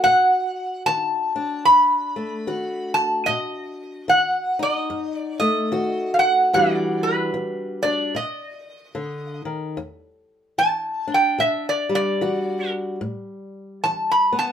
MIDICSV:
0, 0, Header, 1, 3, 480
1, 0, Start_track
1, 0, Key_signature, 1, "minor"
1, 0, Tempo, 808625
1, 41, Time_signature, 4, 2, 24, 8
1, 8619, End_track
2, 0, Start_track
2, 0, Title_t, "Resonator guitar played with a steel bar"
2, 0, Program_c, 0, 25
2, 22, Note_on_c, 0, 78, 95
2, 488, Note_off_c, 0, 78, 0
2, 511, Note_on_c, 0, 81, 96
2, 973, Note_off_c, 0, 81, 0
2, 982, Note_on_c, 0, 83, 97
2, 1744, Note_off_c, 0, 83, 0
2, 1746, Note_on_c, 0, 81, 91
2, 1936, Note_on_c, 0, 75, 95
2, 1955, Note_off_c, 0, 81, 0
2, 2406, Note_off_c, 0, 75, 0
2, 2430, Note_on_c, 0, 78, 85
2, 2744, Note_off_c, 0, 78, 0
2, 2746, Note_on_c, 0, 75, 87
2, 3078, Note_off_c, 0, 75, 0
2, 3078, Note_on_c, 0, 74, 87
2, 3196, Note_off_c, 0, 74, 0
2, 3203, Note_on_c, 0, 75, 91
2, 3642, Note_off_c, 0, 75, 0
2, 3644, Note_on_c, 0, 77, 62
2, 3672, Note_off_c, 0, 77, 0
2, 3675, Note_on_c, 0, 78, 91
2, 3880, Note_off_c, 0, 78, 0
2, 3883, Note_on_c, 0, 74, 87
2, 4174, Note_on_c, 0, 71, 74
2, 4185, Note_off_c, 0, 74, 0
2, 4645, Note_on_c, 0, 74, 88
2, 4670, Note_off_c, 0, 71, 0
2, 4826, Note_off_c, 0, 74, 0
2, 4845, Note_on_c, 0, 75, 75
2, 5593, Note_off_c, 0, 75, 0
2, 6283, Note_on_c, 0, 81, 96
2, 6594, Note_off_c, 0, 81, 0
2, 6615, Note_on_c, 0, 79, 84
2, 6765, Note_off_c, 0, 79, 0
2, 6767, Note_on_c, 0, 76, 78
2, 6920, Note_off_c, 0, 76, 0
2, 6939, Note_on_c, 0, 74, 81
2, 7087, Note_off_c, 0, 74, 0
2, 7094, Note_on_c, 0, 74, 97
2, 7554, Note_off_c, 0, 74, 0
2, 8213, Note_on_c, 0, 81, 89
2, 8362, Note_off_c, 0, 81, 0
2, 8378, Note_on_c, 0, 83, 80
2, 8525, Note_off_c, 0, 83, 0
2, 8540, Note_on_c, 0, 81, 84
2, 8619, Note_off_c, 0, 81, 0
2, 8619, End_track
3, 0, Start_track
3, 0, Title_t, "Steel-string acoustic guitar"
3, 0, Program_c, 1, 25
3, 0, Note_on_c, 1, 63, 59
3, 0, Note_on_c, 1, 66, 74
3, 30, Note_on_c, 1, 47, 76
3, 478, Note_off_c, 1, 47, 0
3, 511, Note_on_c, 1, 51, 67
3, 803, Note_off_c, 1, 63, 0
3, 805, Note_on_c, 1, 62, 55
3, 959, Note_off_c, 1, 51, 0
3, 990, Note_on_c, 1, 42, 61
3, 1283, Note_on_c, 1, 57, 53
3, 1439, Note_off_c, 1, 42, 0
3, 1467, Note_on_c, 1, 51, 67
3, 1468, Note_off_c, 1, 66, 0
3, 1470, Note_on_c, 1, 66, 69
3, 1918, Note_off_c, 1, 51, 0
3, 1935, Note_off_c, 1, 57, 0
3, 1948, Note_on_c, 1, 47, 76
3, 2398, Note_off_c, 1, 47, 0
3, 2422, Note_on_c, 1, 51, 63
3, 2440, Note_off_c, 1, 62, 0
3, 2726, Note_on_c, 1, 63, 61
3, 2876, Note_off_c, 1, 51, 0
3, 2908, Note_on_c, 1, 42, 64
3, 3208, Note_on_c, 1, 57, 59
3, 3359, Note_off_c, 1, 42, 0
3, 3394, Note_on_c, 1, 51, 72
3, 3395, Note_off_c, 1, 66, 0
3, 3398, Note_on_c, 1, 66, 66
3, 3842, Note_off_c, 1, 51, 0
3, 3857, Note_off_c, 1, 63, 0
3, 3858, Note_off_c, 1, 57, 0
3, 3879, Note_on_c, 1, 40, 80
3, 3883, Note_on_c, 1, 52, 60
3, 3887, Note_on_c, 1, 55, 65
3, 3891, Note_off_c, 1, 66, 0
3, 3892, Note_on_c, 1, 62, 67
3, 3894, Note_on_c, 1, 66, 69
3, 4324, Note_off_c, 1, 40, 0
3, 4349, Note_off_c, 1, 52, 0
3, 4356, Note_on_c, 1, 52, 65
3, 4648, Note_off_c, 1, 62, 0
3, 4655, Note_on_c, 1, 62, 60
3, 4803, Note_off_c, 1, 52, 0
3, 4822, Note_off_c, 1, 62, 0
3, 4827, Note_off_c, 1, 66, 0
3, 4836, Note_on_c, 1, 47, 72
3, 4846, Note_off_c, 1, 55, 0
3, 5283, Note_off_c, 1, 47, 0
3, 5311, Note_on_c, 1, 50, 67
3, 5608, Note_off_c, 1, 50, 0
3, 5611, Note_on_c, 1, 51, 59
3, 5800, Note_on_c, 1, 40, 75
3, 5802, Note_off_c, 1, 51, 0
3, 6245, Note_off_c, 1, 40, 0
3, 6281, Note_on_c, 1, 52, 59
3, 6574, Note_on_c, 1, 62, 56
3, 6725, Note_off_c, 1, 52, 0
3, 6758, Note_on_c, 1, 47, 64
3, 7060, Note_on_c, 1, 55, 60
3, 7203, Note_off_c, 1, 47, 0
3, 7250, Note_on_c, 1, 52, 70
3, 7253, Note_on_c, 1, 66, 72
3, 7688, Note_off_c, 1, 52, 0
3, 7699, Note_off_c, 1, 62, 0
3, 7705, Note_off_c, 1, 66, 0
3, 7723, Note_on_c, 1, 45, 73
3, 8164, Note_off_c, 1, 45, 0
3, 8215, Note_on_c, 1, 52, 66
3, 8503, Note_on_c, 1, 59, 59
3, 8619, Note_off_c, 1, 52, 0
3, 8619, Note_off_c, 1, 55, 0
3, 8619, Note_off_c, 1, 59, 0
3, 8619, End_track
0, 0, End_of_file